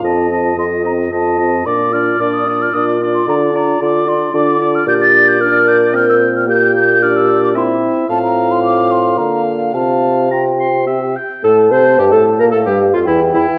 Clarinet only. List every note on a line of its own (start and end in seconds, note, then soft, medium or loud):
0.03 0.29 F4 soft
0.30 0.57 F4 soft
0.58 0.84 F4 soft
0.85 1.11 F4 soft
1.12 1.38 F4 soft
1.39 1.65 F4 soft
1.66 1.92 F4 soft
1.93 2.19 F4 soft
2.20 2.46 F4 soft
2.47 2.73 F4 soft
2.74 2.99 F4 medium
3.00 3.27 F4 soft
3.27 3.53 F4 medium
3.54 3.80 F4 medium
3.80 4.06 F4 medium
4.07 4.33 F4 soft
4.33 4.59 F4 medium
4.60 4.86 F4 medium
4.87 5.42 G4 medium
5.40 6.30 A#4 medium
6.47 7.00 G4 medium
7.01 7.56 G4 medium
7.55 8.08 E4 medium
8.09 9.14 F4 medium
9.18 9.73 F4 soft
9.74 10.30 F4 soft
10.31 10.89 F4 soft
10.88 11.16 G4 soft
11.44 11.73 A4 medium
11.71 12.01 C5 medium
11.99 12.14 G4 medium
12.13 12.39 A4 medium
12.40 12.46 A#4 medium
12.53 12.59 A4 medium
12.67 12.96 G4 medium
12.95 13.07 F4 medium
13.07 13.20 E4 medium
13.35 13.47 E4 medium